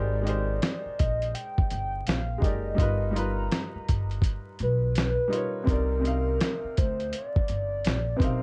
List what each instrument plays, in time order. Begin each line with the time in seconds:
Already playing: upright bass G#1, upright piano G#3 D#4 G4 A#4 C5, soft synth lead D5
0.22 upright piano G#3 D#4 G4
0.27 upright piano A#4 C5, closed hi-hat
0.62 snare, closed hi-hat
0.86 muted upright bass stroke
0.99 upright bass A#1, soft synth lead D#5, kick, closed hi-hat
1.22 closed hi-hat
1.34 soft synth lead G5, closed hi-hat
1.58 kick
1.70 upright bass G1, soft synth lead G5, closed hi-hat
2.07 upright bass A#1, soft synth lead F5, snare, closed hi-hat
2.38 upright piano G#3 D#4, kick
2.42 upright bass F#1, upright piano G4 A#4 D5, soft synth lead D#5, closed hi-hat
2.75 upright piano G3 D#4 F4, kick
2.79 upright bass G1, upright piano A#4 B4, closed hi-hat
3.11 upright piano G3 D#4
3.15 upright piano F4 A#4 B4, soft synth lead A#5, closed hi-hat
3.52 snare, closed hi-hat
3.75 muted upright bass stroke
3.89 upright bass G1, kick, closed hi-hat
4.11 closed hi-hat
4.22 kick, closed hi-hat
4.59 upright bass B1, soft synth lead B4, closed hi-hat
4.95 snare, closed hi-hat
5.28 upright piano G3 D#4 F4
5.33 upright piano A#4 C#5, closed hi-hat
5.64 upright piano C3 C4, kick
5.68 upright bass C2, upright piano D#4 A#4 D5, soft synth lead A#4, closed hi-hat
6.00 upright piano C3 C4
6.04 upright piano D#4 A#4 F5, closed hi-hat
6.40 snare, closed hi-hat
6.64 muted upright bass stroke
6.77 upright bass D2, soft synth lead C5, kick, closed hi-hat
7.00 closed hi-hat
7.13 soft synth lead D5, closed hi-hat
7.36 kick
7.48 upright bass G1, closed hi-hat
7.85 upright bass A#1, snare, closed hi-hat
8.16 upright bass B1, upright piano C3 C4 D#4, soft synth lead B4, kick
8.22 upright piano A#4 F5, soft synth lead C5, closed hi-hat